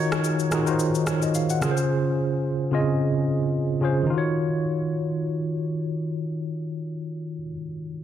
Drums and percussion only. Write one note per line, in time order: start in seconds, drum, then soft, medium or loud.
0.12 cross-stick loud
0.12 shaker soft
0.24 shaker medium
0.39 shaker soft
0.52 cross-stick medium
0.52 shaker medium
0.67 shaker soft
0.79 shaker medium
0.95 shaker soft
1.07 cross-stick medium
1.07 shaker medium
1.22 shaker medium
1.35 shaker medium
1.50 shaker medium
1.62 cross-stick medium
1.62 shaker medium
1.77 shaker medium